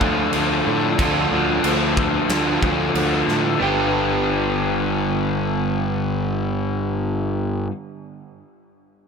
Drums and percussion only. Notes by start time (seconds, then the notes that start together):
0.01 kick
0.33 crash
0.99 kick, crash
1.64 crash
1.97 kick
2.29 snare, crash
2.63 kick
2.95 crash
3.29 snare